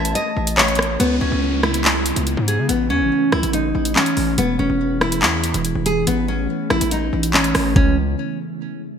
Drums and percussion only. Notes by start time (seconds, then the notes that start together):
0.05 closed hi-hat
0.15 closed hi-hat
0.47 closed hi-hat
0.58 clap
0.68 closed hi-hat
0.75 cross-stick, closed hi-hat
0.82 closed hi-hat
1.00 closed hi-hat
1.63 cross-stick
1.74 closed hi-hat
1.85 clap
2.06 closed hi-hat
2.16 closed hi-hat
2.27 closed hi-hat
2.48 closed hi-hat
2.69 closed hi-hat
3.32 cross-stick
3.43 closed hi-hat
3.53 closed hi-hat
3.85 closed hi-hat
3.96 clap
4.06 closed hi-hat
4.17 open hi-hat
4.38 closed hi-hat
5.01 cross-stick
5.12 closed hi-hat
5.22 clap
5.44 closed hi-hat
5.54 closed hi-hat
5.65 closed hi-hat
5.86 closed hi-hat
6.07 closed hi-hat
6.70 cross-stick
6.81 closed hi-hat
6.91 closed hi-hat
7.23 closed hi-hat
7.34 clap
7.44 closed hi-hat
7.55 cross-stick, open hi-hat
7.76 kick